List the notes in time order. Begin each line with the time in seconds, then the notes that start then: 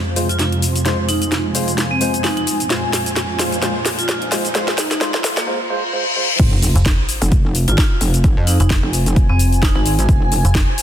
Already playing: F2 C3 G#3 F4 C5, riser
0.16 G#3 F4 C5 G#5, open hi-hat, shaker
0.29 F4, closed hi-hat, shaker
0.39 F4, snare, closed hi-hat, shaker
0.52 closed hi-hat
0.62 open hi-hat, shaker
0.76 closed hi-hat, shaker
0.86 G#3 F4 C5, snare, closed hi-hat, shaker
1.09 D#4, open hi-hat, shaker
1.22 D#4, closed hi-hat, shaker
1.32 snare, closed hi-hat, shaker
1.55 G#3 F4 C5, open hi-hat, shaker
1.68 closed hi-hat, shaker
1.78 snare, closed hi-hat, shaker
1.91 C4
2.01 G#3 F4 C5, open hi-hat, shaker
2.14 closed hi-hat, shaker
2.24 D#4, snare, open hi-hat, shaker
2.37 D#4, closed hi-hat
2.47 open hi-hat, shaker
2.60 closed hi-hat, shaker
2.70 A#2 G#3 F4 C5, snare, closed hi-hat, shaker
2.93 snare, open hi-hat, shaker
3.06 closed hi-hat, shaker
3.16 snare, closed hi-hat, shaker
3.39 G#3 F4 C5, snare, open hi-hat, shaker
3.52 closed hi-hat, shaker
3.62 G#3 F4 C5, snare, closed hi-hat, shaker
3.85 snare, open hi-hat, shaker
3.99 F4, closed hi-hat, shaker
4.09 F4, snare, closed hi-hat, shaker
4.22 closed hi-hat
4.32 G#3 F4 C5, snare, open hi-hat, shaker
4.45 closed hi-hat, shaker
4.55 G#3 F4 C5, snare, closed hi-hat, shaker
4.68 snare
4.78 D#4, snare, open hi-hat, shaker
4.91 D#4, snare, closed hi-hat, shaker
5.01 G#3 F4 C5, snare, closed hi-hat, shaker
5.14 snare
5.24 snare, open hi-hat, shaker
5.37 A#3, snare, closed hi-hat, shaker
5.47 G#3 F4 C5, reverse cymbal
5.70 G#3 F4 C5
5.93 G#3 F4 C5
6.16 G#3 F4 C5
6.39 F1 F4, kick, closed hi-hat, crash, sub drop, shaker
6.62 open hi-hat, shaker
6.75 F1, closed hi-hat, shaker
6.86 C5, kick, snare, closed hi-hat, shaker
6.96 G#5
7.09 open hi-hat, shaker
7.22 F1, closed hi-hat, shaker
7.32 kick, closed hi-hat, shaker
7.55 open hi-hat, shaker
7.68 G#1 F4, closed hi-hat, shaker
7.78 F4, kick, snare, closed hi-hat, shaker
8.01 F1, open hi-hat, shaker
8.14 closed hi-hat, shaker
8.24 kick, closed hi-hat, shaker
8.37 F2
8.47 D#4, open hi-hat, shaker
8.60 F1 D#4, closed hi-hat, shaker
8.70 kick, snare, closed hi-hat, shaker
8.83 F1
8.93 open hi-hat, shaker
9.06 closed hi-hat, shaker
9.16 kick, closed hi-hat, shaker
9.29 F1 C4
9.39 open hi-hat, shaker
9.53 closed hi-hat, shaker
9.62 D#4, kick, snare, open hi-hat, shaker
9.75 G#1 D#4
9.86 open hi-hat, shaker
9.99 closed hi-hat, shaker
10.09 F1, kick, closed hi-hat, shaker
10.32 open hi-hat, shaker
10.45 F1, closed hi-hat, shaker
10.55 kick, snare, closed hi-hat, shaker
10.78 open hi-hat, shaker